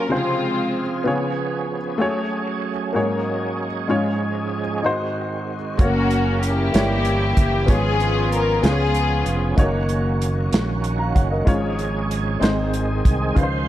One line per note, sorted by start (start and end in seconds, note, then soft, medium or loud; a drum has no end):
0.00 0.13 F#3 medium
0.00 0.14 G#3 soft
0.00 0.11 A#3 medium
0.00 0.13 A#3 medium
0.00 0.09 F4 medium
0.00 0.13 F#4 medium
0.00 0.11 G#4 medium
0.00 0.14 F5 medium
0.09 0.81 C3 medium
0.09 1.01 C#3 medium
0.09 1.06 F3 medium
0.09 1.05 C4 medium
0.09 0.81 F4 medium
0.09 1.06 F4 medium
0.09 0.18 F#4 medium
0.09 0.82 G#4 medium
0.09 0.83 C5 medium
0.14 1.03 G#3 soft
0.14 1.03 C4 soft
0.14 0.83 F4 medium
0.14 1.05 G#4 medium
1.04 1.97 C#3 medium
1.04 1.12 D#3 soft
1.04 1.76 B3 medium
1.04 2.00 B3 medium
1.04 1.99 C#4 medium
1.04 1.77 F4 medium
1.04 1.99 G#4 medium
1.04 1.77 G#4 medium
1.04 1.78 C#5 medium
1.13 2.04 F3 medium
1.98 2.95 F#3 medium
1.98 2.70 A3 medium
1.98 2.95 A3 medium
1.98 2.95 C#4 medium
1.98 2.71 F#4 medium
1.98 2.72 G#4 medium
1.98 2.94 G#4 medium
1.98 2.72 C#5 medium
2.93 3.85 G#2 medium
2.93 3.90 F#3 medium
2.93 3.65 A#3 medium
2.93 3.90 A#3 medium
2.93 3.89 C#4 medium
2.93 3.66 F#4 medium
2.93 3.66 G#4 medium
2.93 3.89 G#4 medium
2.93 3.67 C#5 medium
3.88 4.80 G#2 medium
3.88 4.85 G#2 medium
3.88 4.84 F3 medium
3.88 4.60 G#3 medium
3.88 4.84 G#3 medium
3.88 4.60 C#4 medium
3.88 4.85 C#4 medium
3.88 4.61 F4 medium
3.88 4.85 G#4 medium
3.88 4.61 C#5 medium
4.82 5.75 G#2 medium
4.82 5.79 D#3 medium
4.82 5.55 G#3 medium
4.82 5.79 G#3 medium
4.82 4.91 B3 soft
4.82 5.55 D#4 medium
4.82 5.79 F#4 medium
4.82 5.56 F#4 medium
4.82 5.56 C5 medium
4.91 5.82 C4 medium
5.78 6.70 F#1 medium
5.78 6.73 C#3 medium
5.78 5.85 A3 soft
5.78 6.73 A#3 medium
5.78 6.43 A#3 medium
5.78 6.73 C#4 medium
5.78 6.51 F#4 medium
5.78 6.73 A#4 medium
5.78 6.51 C#5 medium
5.78 6.50 F5 medium
5.78 kick medium
5.78 closed hi-hat medium
5.82 6.53 A#3 medium
5.82 6.71 C#4 medium
5.82 6.40 F#4 medium
6.11 closed hi-hat medium
6.43 7.66 A#3 soft
6.43 7.66 E4 medium
6.43 7.70 G4 medium
6.43 closed hi-hat medium
6.72 7.33 G1 medium
6.72 7.68 E3 medium
6.72 7.64 G3 medium
6.72 7.44 A#3 medium
6.72 7.69 A#3 soft
6.72 7.67 C#4 soft
6.72 7.45 E4 medium
6.72 6.81 F#4 soft
6.72 7.45 G4 medium
6.72 7.46 C#5 medium
6.72 snare medium
6.72 closed hi-hat medium
6.80 7.72 G4 medium
7.05 closed hi-hat medium
7.37 7.68 F#1 medium
7.37 kick medium
7.37 closed hi-hat medium
7.66 8.59 G#1 medium
7.66 8.59 G#2 medium
7.66 8.63 F3 medium
7.66 8.38 B3 medium
7.66 8.62 B3 medium
7.66 8.62 C#4 medium
7.66 8.39 F4 medium
7.66 8.40 G#4 medium
7.66 8.62 G#4 medium
7.66 8.40 C#5 medium
7.66 kick medium
7.66 closed hi-hat medium
7.71 8.60 B3 medium
7.71 8.60 F4 medium
7.71 8.33 G#4 medium
8.00 closed hi-hat soft
8.32 8.63 A#4 medium
8.32 closed hi-hat medium
8.62 9.22 C#2 medium
8.62 9.54 C#3 medium
8.62 8.70 E3 soft
8.62 9.34 B3 medium
8.62 9.58 B3 soft
8.62 9.58 C#4 soft
8.62 9.34 F4 medium
8.62 9.58 G#4 medium
8.62 9.34 G#4 medium
8.62 8.71 C5 medium
8.62 snare medium
8.62 closed hi-hat medium
8.66 9.61 F3 medium
8.66 9.55 B3 medium
8.66 9.56 F4 medium
8.66 9.36 G#4 medium
8.72 9.39 C#5 medium
8.94 closed hi-hat medium
9.26 9.55 F1 medium
9.26 closed hi-hat medium
9.56 10.49 F#1 medium
9.56 11.44 D#3 medium
9.56 9.65 G#3 medium
9.56 9.64 A3 medium
9.56 11.44 C#4 medium
9.56 10.28 D#4 medium
9.56 10.29 F#4 medium
9.56 11.44 F#4 medium
9.56 10.29 C#5 medium
9.56 kick loud
9.56 closed hi-hat medium
9.62 10.31 A#3 medium
9.62 11.47 A#3 medium
9.89 closed hi-hat soft
10.22 closed hi-hat medium
10.53 11.12 A#1 medium
10.53 snare loud
10.53 closed hi-hat medium
10.84 closed hi-hat medium
10.99 11.15 F5 soft
10.99 11.14 A#5 medium
11.15 11.45 F#1 medium
11.15 11.31 C#5 soft
11.15 11.30 F#5 medium
11.15 kick medium
11.15 closed hi-hat medium
11.31 11.62 A#4 soft
11.31 11.61 D#5 soft
11.45 12.38 G#1 loud
11.45 12.37 G#2 medium
11.45 12.42 F3 medium
11.45 12.17 G#3 medium
11.45 12.40 G#3 medium
11.45 12.18 C#4 medium
11.45 12.42 C#4 medium
11.45 12.18 F4 medium
11.45 11.54 F#4 medium
11.45 12.19 C#5 medium
11.45 kick medium
11.45 closed hi-hat medium
11.54 12.45 G#4 medium
11.79 closed hi-hat soft
12.11 closed hi-hat medium
12.40 13.01 G#1 medium
12.40 13.32 G#2 medium
12.40 13.36 D#3 medium
12.40 13.12 G#3 medium
12.40 13.36 G#3 medium
12.40 13.12 C4 medium
12.40 13.36 C4 medium
12.40 13.13 D#4 medium
12.40 12.48 G4 medium
12.40 13.14 C5 medium
12.40 closed hi-hat medium
12.44 13.39 G#4 medium
12.44 snare loud
12.74 closed hi-hat medium
13.05 13.34 C2 medium
13.05 kick medium
13.05 closed hi-hat medium
13.33 13.68 C#2 medium
13.33 13.68 C#3 medium
13.33 13.68 G#3 medium
13.33 13.68 C#4 medium
13.33 13.68 F4 medium
13.33 13.43 B4 medium
13.33 13.68 G#5 medium
13.33 13.68 C6 medium
13.33 kick medium
13.33 closed hi-hat medium
13.37 13.68 D#3 soft
13.37 13.68 F3 soft
13.37 13.68 C5 medium
13.37 13.68 F5 medium
13.43 13.68 C5 medium